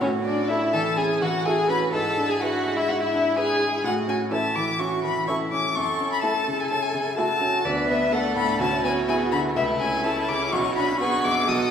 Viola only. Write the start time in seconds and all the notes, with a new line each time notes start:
0.02 C#4
0.26 D4
0.50 E4
0.74 A4
0.97 G#4
1.22 F#4
1.46 G#4
1.68 B4
1.93 A4
2.28 G#4
2.41 F#4
2.76 E4
2.88 F#4
3.01 E4
3.36 G#4
4.31 E3
5.28 E3
6.23 A3
7.18 A3
7.65 B3
8.13 A3
8.60 C#4
9.08 B3
9.56 A3
10.04 C#4
11.00 B3
11.48 B3